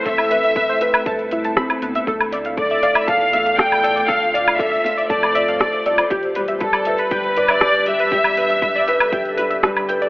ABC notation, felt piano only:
X:1
M:4/4
L:1/8
Q:1/4=119
K:Ddor
V:1 name="Felt piano"
A, B A, B A E C B, | A, d A, d A A, A, d | A, d A A, A, d A, d | G G, G, B G, B G G, |
G, B G, B G G, G, B |]